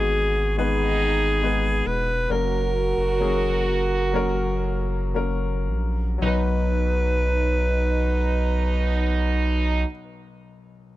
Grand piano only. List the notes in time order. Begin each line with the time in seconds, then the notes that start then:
Already playing: G#2 G#3 B3 D#4 F#4 B4
0.58 G#3 B3 D#4 B4
1.42 G#3 B3 D#4 B4
2.29 F#3 A#3 C#4 A#4
3.20 F#3 A#3 C#4 G#4
4.13 F#3 A#3 C#4 A#4
5.14 F#3 A#3 C#4 A#4
6.18 B1 F#3
6.22 D#4 B4